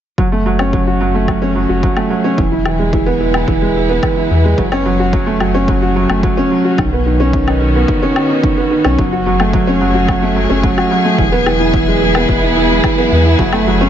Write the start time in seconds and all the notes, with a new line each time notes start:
0.18 F#1 F#3, kick
0.32 A3 C#4
0.39 A3
0.46 F#3
0.59 C#4, low woodblock
0.73 F#3, kick
0.86 F#4 G#4
1.00 F#3
1.14 A3
1.28 F#3, kick, low woodblock
1.42 C#4
1.55 F#3
1.69 F#1 F#4
1.83 F#3, kick
1.96 A3, low woodblock
2.10 F#3
2.24 C#4
2.38 E1 E3, kick
2.48 B3 E4
2.60 E4
2.65 E3, low woodblock
2.79 G#3
2.93 E3, kick
3.06 B3
3.20 E3
3.34 E4, low woodblock
3.48 E1 E3, kick
3.62 G#3
3.76 E3
3.89 B3
4.03 E3, kick, low woodblock
4.17 E4
4.30 E2 E3
4.45 G#3
4.58 F#1 F#3, kick
4.69 A3 C#4, low woodblock
4.75 C#4
4.85 F#3
5.00 F#4
5.13 F#3, kick
5.26 A3
5.40 F#3, low woodblock
5.54 C#4
5.68 F#3, kick
5.82 F#4
5.96 F#3
6.09 F#1 A3, low woodblock
6.23 F#3, kick
6.37 C#4
6.51 F#3
6.65 F#4
6.78 B1 D#3, kick, low woodblock
6.93 B3
7.06 D#3
7.12 F#4
7.20 C#4
7.33 D#3, kick
7.48 D#4, low woodblock
7.61 D#3
7.75 B3
7.88 D#3, kick
8.03 C#4
8.16 D#3, low woodblock
8.30 D#4
8.44 D#3, kick
8.58 B3
8.71 D#3
8.85 B1 C#4, low woodblock
8.98 F#1 F#3, kick
9.12 A3 F#4
9.26 F#3 G#4
9.40 A3, low woodblock
9.53 F#3, kick
9.67 C#4
9.81 F#3
9.94 F#4
10.08 F#3, kick, low woodblock
10.22 A3
10.36 F#3
10.50 F#1 C#4
10.63 F#3, kick
10.77 F#4, low woodblock
10.91 F#3
11.05 A3
11.19 E1 E3, kick
11.24 B3
11.32 B3
11.46 E3, low woodblock
11.60 E4
11.74 E3, kick
11.88 G#3
12.02 E3
12.15 B3, low woodblock
12.29 E1 E3, kick
12.43 E4
12.57 E3
12.71 G#3
12.84 E3, kick, low woodblock
12.98 B3
13.12 E2 E3
13.25 E4
13.39 F#1 F#3, kick
13.53 A3, low woodblock
13.58 A3
13.66 F#3 C#4
13.81 C#4